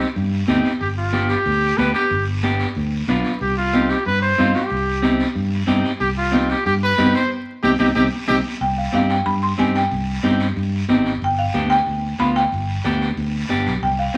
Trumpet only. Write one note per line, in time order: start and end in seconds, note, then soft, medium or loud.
0.81 0.88 G4 medium
0.98 1.31 F4 medium
1.29 1.79 G4 medium
1.77 1.93 B4 medium
1.94 2.24 G4 medium
3.42 3.56 G4 medium
3.57 3.92 F4 medium
3.90 4.05 G4 medium
4.06 4.21 B4 medium
4.22 4.52 C5 medium
4.55 5.16 G4 medium
6.01 6.08 G4 medium
6.17 6.52 F4 medium
6.50 6.66 G4 medium
6.66 6.73 G4 medium
6.83 7.13 B4 medium
7.16 7.30 C5 medium
7.63 7.71 G4 medium
7.79 7.87 G4 medium
7.95 8.03 G4 medium
8.28 8.36 G4 medium